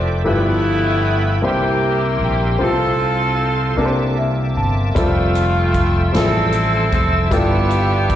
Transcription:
Already playing: fingered electric bass F1, saxophone section F3 A3, grand piano A3 D4 E4 F4 G4, tonewheel organ C5 D5 E5 D6
0.24 fingered electric bass G1, grand piano G2 F3 A3 E4 G4 B4, saxophone section A3 B3 E4, tonewheel organ A4 G5 B5
1.42 fingered electric bass C2, grand piano C3 A#3 C4 D4 G4 C5, saxophone section A#3 E4, tonewheel organ A#4 G5 C6
1.46 grand piano E4, saxophone section G4
2.21 fingered electric bass A#1, saxophone section G4
2.59 fingered electric bass C2, grand piano C3 C4 F4 G4, tonewheel organ A4 C5 F5
2.63 saxophone section C4 F4 A4
2.68 grand piano A4
3.76 fingered electric bass C2, grand piano C3 A#3 D4 G4 A4 A#4, tonewheel organ A#3 E5 A5 D6
3.85 grand piano C5
4.18 grand piano E5
4.57 fingered electric bass G1, grand piano A5
4.94 fingered electric bass F1, grand piano G3 C4 F4 A4 E5, saxophone section A3 C4, tonewheel organ A4 E5 G5 E6, kick, closed hi-hat
4.99 saxophone section F4
5.35 closed hi-hat
5.74 kick, closed hi-hat
6.13 fingered electric bass A1, grand piano F3 G3 C4 E4 G#4, saxophone section C4 E4 A4, snare, closed hi-hat
6.22 grand piano A4
6.52 closed hi-hat
6.92 fingered electric bass F1, saxophone section A4, kick, closed hi-hat
7.31 fingered electric bass G1, grand piano G2 G3 B3 E4 F4 A4, saxophone section B3 D4 G4, tonewheel organ B4 A5, kick, closed hi-hat
7.70 closed hi-hat
8.09 kick, closed hi-hat

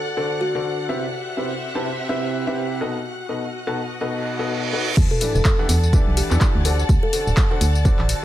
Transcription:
Already playing: string section A4 D5 F#5, violin section F#5 F#6
0.17 grand piano D3 D4 F#4 A4 C5 D5
0.41 kalimba F#4
0.55 grand piano D3 D4 F#4 A4 C5 D5
0.89 grand piano C3 E4 G4 B4 C5 E5, string section G4
1.08 string section C4 E5
1.37 grand piano C3 E4 G4 B4 C5 E5
1.75 grand piano C3 E4 G4 B4 C5 A5
2.09 grand piano C3 E4 G4 B4 C5 E5
2.47 grand piano C3 E4 G4 B4 C5 E5
2.81 grand piano B2 D#4 F#4 A4 B4 D#5, string section F#4
3.29 grand piano B2 D#4 F#4 A4 B4 D#5, string section D#5
3.67 grand piano B2 D#4 F#4 A4 B4 A5, string section B4
4.01 grand piano B2 D#4 F#4 A4 B4 D#5, reverse cymbal
4.39 grand piano B2 D#4 F#4 A4 B4 D#5
4.73 grand piano D#4 F#4 A4 B4 D#5
4.97 fm bass E2, string section A4, violin section A5 A6, kick, crash, tambourine, sub drop
5.11 kalimba A4
5.21 grand piano E3 D4 E4 G4 B4 D5, kalimba A4, open hi-hat, tambourine
5.35 fm bass E1, kalimba A4, tambourine
5.45 string section F#5, kick, clap, tambourine
5.59 grand piano E3 D4 E4 G4 B4 F#5
5.67 fm bass E2, string section D5, open hi-hat, tambourine
5.83 tambourine
5.93 grand piano E3 D4 E4 G4 B4 D5, kick, tambourine
6.07 fm bass B1
6.17 kalimba G4, open hi-hat, tambourine
6.31 fm bass E2, grand piano E3 D4 E4 G4 B4 D5, clap, tambourine
6.41 kick, clap, tambourine
6.55 fm bass D2
6.65 grand piano D3 D4 F#4 A4 C5 D5, open hi-hat, tambourine
6.79 tambourine
6.89 fm bass D2, kick, tambourine
7.03 kalimba A4
7.13 grand piano D3 D4 F#4 A4 C5 D5, open hi-hat, tambourine
7.27 fm bass D1, tambourine
7.37 kick, clap, tambourine
7.51 grand piano D3 D4 F#4 A4 C5 F#5
7.61 fm bass D2, open hi-hat, tambourine
7.75 tambourine
7.85 grand piano D3 D4 F#4 A4 C5 D5, kick, tambourine
7.99 fm bass A1, clap
8.09 open hi-hat, tambourine

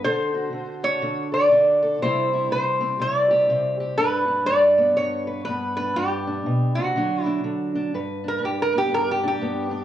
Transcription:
Already playing: steel-string acoustic guitar D4
0.05 steel-string acoustic guitar D3 A4, resonator guitar played with a steel bar C5
0.35 steel-string acoustic guitar F#4
0.53 steel-string acoustic guitar D3
0.84 steel-string acoustic guitar D4, resonator guitar played with a steel bar C#5
1.02 steel-string acoustic guitar D3
1.32 steel-string acoustic guitar A4, resonator guitar played with a steel bar D5
1.52 steel-string acoustic guitar D3 D4
1.83 steel-string acoustic guitar A4
2.02 steel-string acoustic guitar C3 G3 C4 E4 G4, resonator guitar played with a steel bar C5
2.33 steel-string acoustic guitar E4
2.51 steel-string acoustic guitar C3, resonator guitar played with a steel bar C5
2.81 steel-string acoustic guitar C4
3.00 steel-string acoustic guitar C3, resonator guitar played with a steel bar D5
3.31 steel-string acoustic guitar G4
3.49 steel-string acoustic guitar C3 C4
3.80 steel-string acoustic guitar G4
3.98 steel-string acoustic guitar G2 D4, resonator guitar played with a steel bar B4
4.28 steel-string acoustic guitar D4
4.46 steel-string acoustic guitar G2, resonator guitar played with a steel bar D5
4.78 steel-string acoustic guitar B3
4.96 steel-string acoustic guitar G2, resonator guitar played with a steel bar C#5
5.27 steel-string acoustic guitar B4
5.45 steel-string acoustic guitar G2 B3, resonator guitar played with a steel bar B4
5.77 steel-string acoustic guitar D4, resonator guitar played with a steel bar B4
5.96 steel-string acoustic guitar G2 D4, resonator guitar played with a steel bar G4
6.27 steel-string acoustic guitar D4
6.46 steel-string acoustic guitar B2
6.75 steel-string acoustic guitar C3, resonator guitar played with a steel bar F#4
6.96 steel-string acoustic guitar D3 F#3 D4
7.23 steel-string acoustic guitar D4, resonator guitar played with a steel bar E4
7.44 steel-string acoustic guitar D3
7.75 steel-string acoustic guitar D4
7.94 steel-string acoustic guitar G2 B4
8.24 steel-string acoustic guitar D4
8.28 resonator guitar played with a steel bar A#4
8.43 steel-string acoustic guitar G2, resonator guitar played with a steel bar G4
8.62 resonator guitar played with a steel bar A#4
8.74 steel-string acoustic guitar B3, resonator guitar played with a steel bar G4
8.92 steel-string acoustic guitar G2, resonator guitar played with a steel bar A#4
9.11 resonator guitar played with a steel bar G4
9.23 steel-string acoustic guitar D4
9.28 resonator guitar played with a steel bar G4
9.41 steel-string acoustic guitar G2 B3
9.71 steel-string acoustic guitar D4

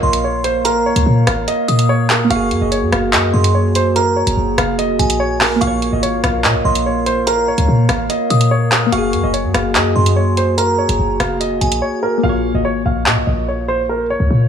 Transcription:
Already playing: synth keys A#3 F4 C#5, glass harmonica A#3 A#4 C#5 F5
0.03 808-style bass A#1, grand piano D#5, synth bell C6
0.13 closed hi-hat
0.24 grand piano C#5
0.44 grand piano C5, closed hi-hat
0.65 grand piano A#4, synth bell A#5, closed hi-hat
0.86 grand piano C#5
0.96 808-style bass C#2, closed hi-hat
1.06 808-style bass A#2
1.27 808-style bass G#1, grand piano F5, cross-stick, closed hi-hat
1.48 grand piano D#5, closed hi-hat
1.68 808-style bass A#2, synth bell D#6, closed hi-hat
1.79 closed hi-hat
1.89 grand piano C#5
2.10 grand piano A#4, clap, closed hi-hat
2.25 synth keys A#3
2.30 808-style bass F#1, synth keys F#4, glass harmonica F#4 G#4, grand piano F5, synth bell C#6, closed hi-hat
2.36 synth keys G#4
2.51 808-style bass F#2, closed hi-hat
2.61 808-style bass F#1, grand piano D#5
2.72 grand piano C#5, closed hi-hat
2.82 808-style bass F#2
2.92 808-style bass F#1, grand piano F5, cross-stick, closed hi-hat
3.13 808-style bass F#2, grand piano D#5, clap, closed hi-hat
3.34 808-style bass F#2, grand piano D#5, synth bell C6
3.44 closed hi-hat
3.55 grand piano C#5
3.75 grand piano C5, closed hi-hat
3.96 grand piano A#4, synth bell A#5, closed hi-hat
4.16 grand piano C#5
4.27 808-style bass F#1, closed hi-hat
4.37 808-style bass F#1
4.58 808-style bass F1, grand piano F5, cross-stick, closed hi-hat
4.79 grand piano D#5, closed hi-hat
4.99 808-style bass A#1, synth bell G#5, closed hi-hat
5.10 closed hi-hat
5.20 grand piano C#5
5.41 grand piano A#4, cross-stick, clap, open hi-hat
5.56 synth keys A#3
5.61 808-style bass A#1, synth keys F4, glass harmonica A#4 C#5 F5, grand piano F5, synth bell C#6, closed hi-hat
5.67 synth keys C#5
5.82 closed hi-hat
5.93 808-style bass G#1, grand piano D#5
6.03 grand piano C#5, closed hi-hat
6.24 808-style bass A#1, grand piano F5, cross-stick, closed hi-hat
6.44 808-style bass A#2, grand piano D#5, clap, closed hi-hat
6.55 808-style bass A#1
6.65 808-style bass A#1, grand piano D#5, synth bell C6
6.75 closed hi-hat
6.86 grand piano C#5
7.06 grand piano C5, closed hi-hat
7.27 grand piano A#4, synth bell A#5, closed hi-hat
7.48 grand piano C#5
7.58 808-style bass C#2, closed hi-hat
7.68 808-style bass A#2
7.89 808-style bass G#1, grand piano F5, cross-stick, closed hi-hat
8.10 grand piano D#5, closed hi-hat
8.30 808-style bass A#2, synth bell D#6, closed hi-hat
8.41 closed hi-hat
8.51 grand piano C#5
8.72 grand piano A#4, clap, closed hi-hat
8.87 synth keys A#3
8.92 808-style bass F#1, glass harmonica A#3 F#4 G#4, synth keys F#4, grand piano F5, synth bell C#6, closed hi-hat
8.98 synth keys G#4
9.13 808-style bass F#2, closed hi-hat
9.24 808-style bass F#1, grand piano D#5
9.34 grand piano C#5, closed hi-hat
9.44 808-style bass F#2
9.54 808-style bass F#1, grand piano F5, cross-stick, closed hi-hat
9.75 808-style bass F#2, grand piano D#5, clap, closed hi-hat
9.96 808-style bass F#2, grand piano D#5, synth bell C6
10.06 closed hi-hat
10.16 grand piano C#5
10.37 grand piano C5, closed hi-hat
10.58 grand piano A#4, synth bell A#5, closed hi-hat
10.78 grand piano C#5
10.89 808-style bass F#1, closed hi-hat
10.99 808-style bass F#1
11.20 808-style bass F1, grand piano F5, cross-stick, closed hi-hat
11.40 grand piano D#5, closed hi-hat
11.61 808-style bass A#1, synth bell G#5, closed hi-hat
11.72 closed hi-hat
11.82 grand piano C#5
12.03 grand piano A#4
12.18 synth keys A#3
12.23 808-style bass A#1, synth keys F4, grand piano F5
12.29 synth keys C#5
12.55 808-style bass G#1, grand piano D#5
12.65 grand piano C#5
12.86 808-style bass A#1, grand piano F5
13.06 808-style bass A#2, grand piano D#5, clap
13.17 808-style bass A#1
13.27 808-style bass A#1, grand piano D#5
13.48 grand piano C#5
13.68 grand piano C5
13.89 grand piano A#4
14.10 grand piano C#5
14.20 808-style bass C#2
14.31 808-style bass A#2

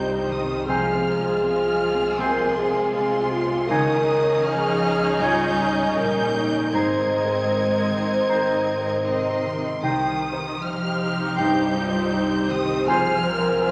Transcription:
Already playing: double bass section C2, grand piano G2 C4 D#4 C5, harp C3 G3 C4 D#4, cello section G3, viola section G3 D#4, violin section D#4 C5 G6, french horn section G4
0.18 grand piano D#4
0.28 cello section D#3, harp G3, violin section D#6
0.44 grand piano C4
0.66 grand piano C2, harp C3, cello section F3, viola section G#3 F4, clarinet C4, french horn section G#4, violin section G#4 F6, oboe C5, flute G#5
0.93 grand piano C4
1.05 harp F4
1.20 grand piano G#4
1.43 cello section F3, grand piano C4, harp C4, violin section F6
1.68 grand piano F4
1.83 harp F3
1.94 grand piano C4
2.19 grand piano C3, cello section C3, clarinet C4, harp C4, french horn section A#4, oboe C5, flute G#5, violin section C6
2.45 grand piano C4
2.56 harp F4, french horn section G#4
2.69 grand piano G#4
2.94 cello section C3, grand piano C4, harp C4, french horn section G#4, violin section C6
3.20 grand piano F4
3.31 french horn section F4
3.45 grand piano C4
3.67 double bass section C#2, grand piano C#2, harp C#3, cello section D#3, viola section C#4 D#4, clarinet D#4, violin section G#4 D#5 D#6, french horn section A#4, oboe C#5, flute G#5
3.96 grand piano D#4
4.08 harp G#5
4.22 grand piano C#5
4.44 cello section F3, harp D#4, french horn section G#4, violin section F6
4.48 grand piano D#4
4.72 grand piano G#4
4.83 french horn section G#4
4.96 grand piano D#4
5.20 grand piano G#2, cello section G3, clarinet D#4, french horn section F4, oboe C#5, flute G#5, violin section G6
5.46 grand piano D#4
5.60 french horn section D#4
5.72 grand piano C#5
5.95 double bass section A#1, cello section G3, harp D#4, grand piano D#4, french horn section A#4, violin section G6
6.21 grand piano D#4
6.35 french horn section D#4
6.48 grand piano D#4
6.71 double bass section G#1, harp G#2, grand piano G#2, cello section G#3, viola section C4 D#4, clarinet D#4, violin section A#4 D#5 G#6, oboe C5, french horn section C5, flute A#5
6.99 grand piano D#4
7.11 harp A#4
7.24 grand piano C5
7.50 grand piano D#4, harp D#4
7.75 grand piano A#4
7.89 harp D#3
8.02 grand piano D#4
8.27 grand piano D#3, harp D#4, clarinet D#4, oboe C5, flute A#5
8.52 grand piano D#4
8.66 harp A#4
8.78 grand piano C5
9.03 cello section C3, viola section C4 D#4, grand piano D#4, harp D#4, violin section A#4 D#5 C6
9.30 grand piano A#4
9.44 harp D#3
9.57 grand piano D#4
9.82 double bass section C2, grand piano C2, harp C3, cello section D#3, viola section C4 D#4, clarinet D#4, violin section G4 C5 D#6, oboe C5, flute G5
10.08 grand piano D#4
10.22 harp G4
10.33 grand piano C5
10.60 cello section F3, harp D#4, grand piano D#4, violin section F6
10.86 grand piano G4
11.00 harp G3
11.13 grand piano D#4
11.36 grand piano G2, cello section G3, french horn section D#4, clarinet D#4, oboe C5, flute G5, violin section G6
11.64 grand piano D#4
11.75 french horn section F4, harp G4
11.88 grand piano C5
12.13 harp D#4, french horn section D#4, grand piano D#4
12.39 grand piano G4
12.50 cello section D#3, harp G3, french horn section G4, violin section D#6
12.65 grand piano D#4
12.86 grand piano C2, harp C3, cello section F3, viola section F4, clarinet F4, violin section G#4 F6, french horn section G#4, oboe C5, flute G#5
13.14 grand piano F4
13.24 french horn section A#4, harp G#5
13.38 grand piano C5
13.61 cello section F3, grand piano F4, harp F4, french horn section C5, violin section F6

